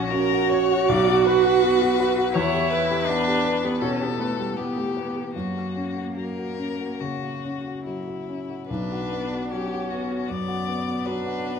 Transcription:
0.00 0.85 A#1 medium
0.00 0.13 C#4 loud
0.00 0.12 F#4 medium
0.00 0.33 F#4 medium
0.00 0.52 C#5 medium
0.10 0.44 C#4 medium
0.10 2.32 F#4 loud
0.10 0.50 A#4 loud
0.33 0.63 F#4 medium
0.49 0.89 C#5 loud
0.49 0.81 C#5 medium
0.71 0.89 F#4 medium
0.88 2.30 B1 medium
0.88 1.25 D5 loud
1.09 1.37 F#4 medium
1.24 2.35 B4 loud
1.24 1.55 B4 medium
1.45 1.73 F#4 medium
1.64 1.92 B3 medium
1.82 2.10 F#4 medium
2.00 2.28 B4 medium
2.18 2.35 F#4 medium
2.33 3.77 E2 medium
2.33 3.08 E4 loud
2.33 2.71 C#5 loud
2.54 2.82 G4 medium
2.70 3.80 B4 loud
2.70 3.01 B4 medium
2.91 3.19 G4 medium
3.07 3.37 B3 medium
3.07 3.67 D4 loud
3.28 3.56 G4 medium
3.45 3.74 B4 medium
3.64 3.83 B3 loud
3.64 3.93 G4 medium
3.81 4.11 B2 medium
3.81 4.03 C#4 loud
3.81 4.58 A4 medium
4.01 4.20 B3 medium
4.01 4.31 G4 medium
4.18 4.39 A3 medium
4.18 4.50 B4 medium
4.38 4.58 G3 medium
4.38 4.69 G4 medium
4.56 4.78 B3 medium
4.56 4.88 B3 medium
4.56 5.33 G4 medium
4.76 4.96 A3 medium
4.76 5.07 G4 medium
4.95 5.34 B3 medium
4.95 5.27 B4 medium
5.16 5.35 G4 soft
5.34 6.97 F#2 medium
5.34 8.23 A#3 medium
5.34 6.06 F#4 medium
5.56 5.88 F#4 soft
5.76 6.08 C#4 soft
5.97 6.29 F#4 soft
6.16 6.50 F#3 soft
6.16 7.02 A#4 medium
6.38 6.71 F#4 soft
6.59 6.92 C#4 soft
6.80 7.13 F#4 soft
7.00 7.34 C#3 soft
7.00 7.85 F#4 medium
7.22 7.56 F#4 soft
7.45 7.77 C#4 soft
7.66 7.98 F#4 soft
7.85 8.19 F#3 soft
7.85 8.66 E4 soft
8.07 8.40 F#4 soft
8.29 8.61 C#4 soft
8.50 8.70 F#4 soft
8.67 10.25 B1 medium
8.67 9.53 D4 medium
8.67 9.46 B4 medium
8.92 9.24 F#4 soft
9.13 9.45 B3 soft
9.33 9.64 F#4 soft
9.50 9.84 F#3 soft
9.50 10.30 C#4 medium
9.50 9.91 G4 medium
9.72 10.03 F#4 soft
9.90 10.22 B3 soft
9.90 10.30 F#4 medium
10.11 10.41 F#4 soft
10.28 10.59 F#2 soft
10.28 11.07 B3 medium
10.28 11.07 D5 medium
10.48 10.78 F#4 medium
10.67 10.98 B3 medium
10.87 11.17 F#4 soft
11.05 11.37 F#3 medium
11.05 11.60 D4 medium
11.05 11.60 B4 medium
11.26 11.55 F#4 medium
11.45 11.60 B3 medium

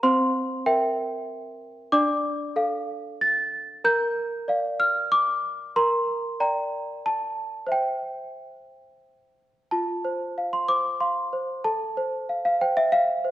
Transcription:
0.03 0.65 C4 medium
0.03 0.65 C5 medium
0.03 0.67 C6 loud
0.66 1.89 A#4 medium
0.66 1.89 E5 medium
0.66 1.30 G5 loud
1.92 2.54 D4 medium
1.92 2.54 D5 medium
1.92 3.21 D6 loud
2.56 3.81 A4 medium
2.56 3.81 F5 medium
3.21 3.85 A6 loud
3.84 4.46 A#4 medium
3.84 4.46 A#5 medium
3.84 4.79 G6 loud
4.48 5.71 D5 medium
4.48 5.72 F5 medium
4.80 5.11 F6 loud
5.12 5.75 D6 loud
5.76 6.38 A#4 medium
5.76 6.38 A#5 medium
5.76 6.40 C6 loud
6.40 7.68 D5 medium
6.40 7.68 G5 medium
6.40 7.05 A#5 medium
7.06 7.72 A5 loud
7.67 9.66 C5 medium
7.67 9.67 E5 soft
7.72 9.39 G5 medium
9.71 11.61 F4 medium
9.71 10.52 A5 medium
10.05 10.56 C5 medium
10.38 10.88 F5 medium
10.53 10.69 C6 medium
10.69 11.20 C5 soft
10.69 11.01 D6 loud
11.01 11.52 F5 soft
11.01 11.65 C6 medium
11.33 11.65 C5 medium
11.65 13.31 A4 medium
11.65 12.44 A5 medium
11.97 12.48 C5 medium
12.29 12.44 F5 medium
12.45 12.60 F5 medium
12.61 13.11 C5 soft
12.61 12.76 G5 medium
12.77 12.92 E5 loud
12.92 13.31 F5 loud
13.24 13.31 C5 medium

